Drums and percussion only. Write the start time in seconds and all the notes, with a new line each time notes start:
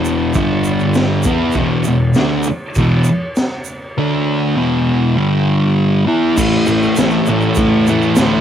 0.05 shaker
0.34 kick, crash, shaker
0.64 shaker
0.80 shaker
0.94 snare, crash, shaker
1.23 kick, shaker
1.52 kick, crash, shaker
1.84 shaker
2.14 snare, crash, shaker
2.43 shaker
2.75 kick, crash, shaker
3.04 shaker
3.36 snare, crash, shaker
3.64 shaker
6.37 kick, crash, shaker
6.66 shaker
6.83 shaker
6.96 snare, crash, shaker
7.10 shaker
7.26 shaker
7.41 shaker
7.55 kick, crash, shaker
7.87 shaker
8.02 shaker
8.16 snare, crash, shaker